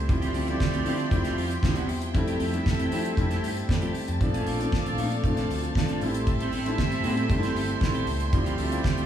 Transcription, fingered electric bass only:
0.09 D2
0.34 D2
0.73 D2
0.86 D3
1.11 D2
1.37 F2
1.63 D2
1.89 E2
2.15 F2
2.40 F2
2.79 F2
2.92 F3
3.17 F2
3.44 G2
3.83 F3
4.08 F2
4.21 A#1
4.47 A#1
4.86 A#1
4.98 A#2
5.24 A#1
5.50 D2
6.01 A1
6.53 A1
6.91 A1
7.04 A2
7.29 G2
7.55 G1
7.81 A1
8.07 C#2
8.33 D2
8.59 D2
8.97 D2

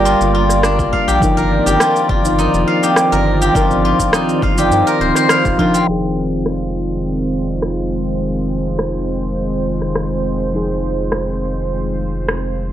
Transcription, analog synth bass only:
Already playing: G1
0.21 G1
1.08 A#1
1.22 G1
1.66 G1
2.09 G1
2.54 F1
3.12 G1
3.55 G1
4.00 G1
4.43 G1
4.71 G2
5.00 D1
5.45 F1
5.88 F1

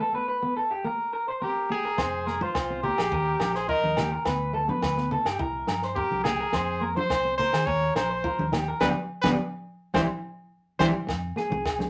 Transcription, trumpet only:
1.43 G4
1.71 G#4
2.43 F4
2.83 G4
3.55 G#4
3.69 A#4
5.95 G4
6.24 G#4
6.97 C5
7.38 C5
7.66 C#5
7.96 C5
8.80 B4
9.22 B4
9.94 C5
10.79 C5

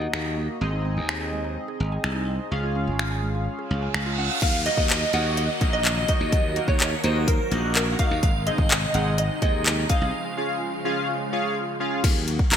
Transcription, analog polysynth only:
Already playing: A#3 D#4 F#4 D#5
0.61 C4 D#4 G#4 D#5
2.51 C#4 F4 G#4 F5
4.66 A#3 D#4 F#4 D#5
5.13 A#3 D#4 F#4 D#5
5.61 A#3 D#4 F#4 D#5
6.08 A#3 D#4 F#4 D#5
6.56 A#3 D#4 F#4 A#4
7.04 A#3 D#4 F#4 D#5
7.51 A#3 D#4 F#4 D#5
7.99 A#3 D#4 F#4 D#5
8.47 C4 D#4 G#4 D#5
8.94 C4 D#4 G#4 D#5
9.42 C4 D#4 G#4 D#5
9.89 C4 D#4 G#4 D#5
10.37 C#4 F4 G#4 F5
10.85 C#4 F4 G#4 F5
11.32 C#4 F4 G#4 F5
11.80 C#4 F4 G#4 F5

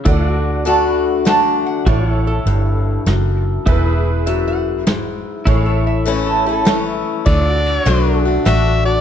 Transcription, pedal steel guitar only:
0.05 E4 A4 D5
0.30 F#4
1.86 F#4 A4 D5
2.09 E4 C#5
3.66 E4 A4 B4
3.87 G#4
5.45 E4 G#4 C#5
5.67 A4
7.26 E4 A4 C#5
7.48 F#4 D5

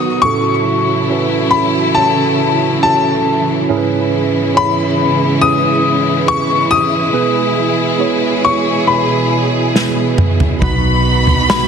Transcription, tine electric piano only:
Already playing: B3 D#4 F#4 A4 A#4 B4 C#5
0.23 A2 C#4 E4 F#4 A4
1.09 C#4 E4 F#4 B4
1.53 C#4 E4 F#4 A4
1.97 C#4 E4 F#4 A4
2.83 C#4 E4 F#4 A4
3.69 G#2 C#4 E4 G#4 A#4
3.77 B4
4.54 C#4 E4 G#4 C#5
4.96 C#4 E4 G#4 B4
5.40 C#4 E4 G#4 B4
6.27 C#4 E4 G#4
7.12 B2 B3 E4 G#4 B4
7.98 B3 E4 G#4 C#5
8.43 B3 E4 G#4 C#5
8.86 B3 E4 G#4 B4
9.74 B3 E4 G#4 B4
10.61 B3 D#4 F#4 B4
11.48 B3 D#4 F#4 B4

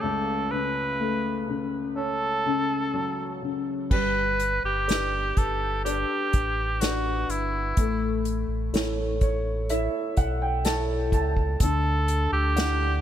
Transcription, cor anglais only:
0.01 A4
0.51 B4
1.97 A4
3.92 B4
4.65 G4
5.38 A4
5.85 G4
6.82 F#4
7.30 E4
11.62 A4
12.33 G4

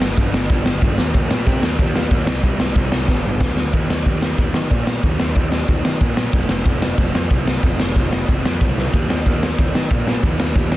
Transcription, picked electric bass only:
0.03 G1
0.17 G1
0.33 G1
0.50 G1
0.65 G1
0.82 G1
0.98 D#2
1.14 D#2
1.30 A#2
1.47 C3
1.62 D#2
1.79 D#2
1.95 D#2
2.11 D#2
2.28 C2
2.43 C2
2.61 C2
2.75 C2
2.93 C2
3.08 G1
3.25 G1
3.41 D2
3.74 D#2
3.90 D#2
4.06 D#2
4.38 D#2
4.56 D#3
4.71 A#2
5.03 D#2
5.21 D#2
5.36 D#2
5.68 D#2
5.86 D#3
6.01 A#2
6.33 F1
6.49 F1
6.66 F1
6.98 F1
7.14 F2
7.31 C2
7.63 F1
7.81 F1
7.96 F1
8.29 F1
8.45 F2
8.61 C2
8.93 D#2
9.11 D#2
9.26 D#2
9.59 D#2
9.75 D#3
9.91 A#2
10.23 D#2
10.40 D#2
10.55 D#2

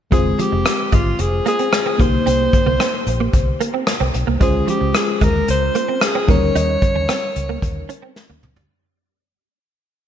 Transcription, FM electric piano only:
0.11 G#3 C4 F4 C5
1.98 A#3 D#4 G4 C5
4.40 G#3 C#4 F4 C5
6.28 G3 C#4 D#4 A#4

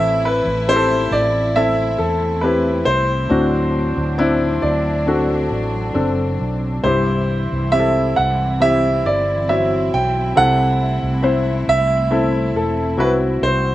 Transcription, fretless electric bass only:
Already playing: A1
0.46 A1
1.11 A1
1.99 E2
2.86 C2
3.31 D2
3.97 D2
4.63 D2
5.51 A1
5.95 F#1
6.40 B1
6.84 C2
7.52 C2
8.18 C2
9.05 G1
9.94 B1
10.37 C2
11.03 C2
11.68 C2
12.54 E1
12.98 C2
13.42 C2

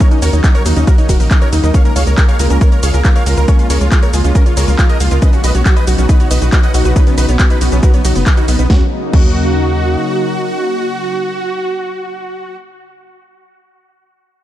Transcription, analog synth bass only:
0.22 D#2
0.33 D#2
0.66 D#2
0.77 D#2
1.09 D#1
1.20 A#1
1.53 D#2
1.63 D#2
1.96 C#2
2.07 C#2
2.39 C#2
2.50 C#2
2.83 C#2
2.94 C#2
3.26 C#2
3.37 C#2
3.70 C#2
3.81 C#2
4.13 C#2
4.24 C#2
4.57 C#2
4.68 C#2
5.00 C#2
5.11 C#2
5.44 B1
5.55 B1
5.87 B1
5.98 B1
6.31 B1
6.42 B1
6.74 B1
6.85 B1
7.18 B1
7.29 B1
7.61 B1
7.72 B1
8.05 B1
8.16 F#1
8.48 B1
8.59 B1
8.70 D#2
9.13 D#2

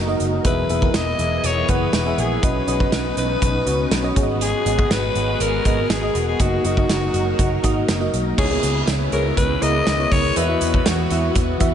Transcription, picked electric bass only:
Already playing: F#1
0.20 F#1
0.45 E1
0.69 E1
0.94 E1
1.19 E1
1.44 E1
1.69 F#1
1.93 E1
2.18 A#1
2.43 B1
2.67 B1
2.92 B1
3.17 B1
3.42 B1
3.66 C#2
3.91 B1
4.16 G#1
4.66 G#1
4.91 G#1
5.15 G#1
5.40 G#1
5.65 G#1
5.90 G#1
6.15 E1
6.39 F#1
6.64 F#1
6.89 F#1
7.14 F#1
7.39 F#1
7.64 G#1
7.89 F#1
8.13 B1
8.38 C#2
8.63 C#2
8.87 C#2
9.12 C#2
9.37 C#2
9.62 C#2
9.87 C#2
10.12 C#2
10.36 E2
10.61 E2
10.86 E2
11.11 E2
11.35 E2
11.61 E2

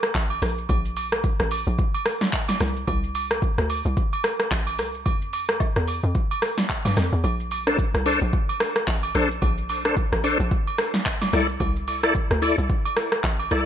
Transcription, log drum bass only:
0.15 A1
0.42 A#1
0.69 A#1
1.40 A1
1.67 A#1
2.61 C2
2.88 C2
3.58 D2
3.85 C2
4.51 A1
4.79 C2
5.06 F2
5.76 E2
6.03 F2
6.85 G2
6.97 F2
7.13 E2
7.24 A#1
7.94 C2
8.22 A#1
8.88 A1
9.15 A#1
9.42 A#1
10.12 A1
10.40 A#1
11.33 C2
11.60 C2
12.31 D2
12.58 C2
13.24 A1
13.51 C2

